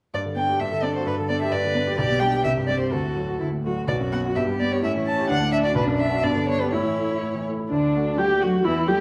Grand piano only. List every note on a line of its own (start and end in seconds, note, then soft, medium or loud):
0.14 0.59 G2 soft
0.26 0.44 D3 soft
0.39 0.57 D4 soft
0.49 0.61 G4 soft
0.60 1.05 G2 soft
0.72 0.90 D3 soft
0.84 1.02 D4 soft
0.96 1.07 F#4 soft
1.06 1.51 G2 soft
1.19 1.37 D3 soft
1.30 1.48 D4 soft
1.42 1.60 G4 soft
1.52 1.97 G2 soft
1.65 1.83 D3 soft
1.77 1.94 D4 soft
1.87 1.99 G4 soft
1.98 2.43 B1 medium
2.10 2.28 B2 soft
2.22 2.40 D4 soft
2.34 2.45 G4 soft
2.44 2.91 C2 soft
2.57 2.76 G2 soft
2.67 2.87 C4 soft
2.79 2.92 G4 soft
2.91 3.38 D2 soft
3.04 3.24 A2 soft
3.16 3.36 A3 soft
3.28 3.48 F#4 soft
3.40 3.87 D2 soft
3.51 3.71 A2 soft
3.64 3.84 A3 soft
3.77 3.89 F#4 soft
3.88 4.34 B1 soft
4.00 4.20 F#2 soft
4.12 4.32 B3 soft
4.25 4.37 F#4 soft
4.36 4.82 G2 soft
4.48 4.67 G3 soft
4.60 4.79 B3 soft
4.71 4.83 G4 soft
4.83 5.28 A2 soft
4.96 5.14 E3 soft
5.07 5.25 C#4 soft
5.19 5.30 G4 soft
5.30 5.74 D2 soft
5.41 5.59 A2 soft
5.52 5.71 D4 soft
5.64 5.75 F#4 soft
5.75 6.21 B1 medium
5.87 6.06 F#2 soft
5.99 6.18 D4 soft
6.10 6.22 F#4 soft
6.23 6.70 G2 soft
6.35 6.54 D3 soft
6.48 6.67 D4 soft
6.60 6.72 G4 soft
6.73 7.21 A2 soft
6.85 7.04 E3 soft
6.98 7.17 A3 soft
7.11 7.29 E4 soft
7.22 7.70 A2 soft
7.35 7.54 E3 soft
7.47 7.66 A3 soft
7.60 7.71 E4 soft
7.71 8.62 D2 soft
7.95 8.16 A3 soft
7.95 8.17 F#4 soft
8.19 8.40 D4 soft
8.19 8.40 F#4 soft
8.43 8.63 A3 soft
8.43 8.63 F#4 soft
8.66 9.01 E2 soft
8.88 9.01 A3 soft
8.88 9.01 G4 soft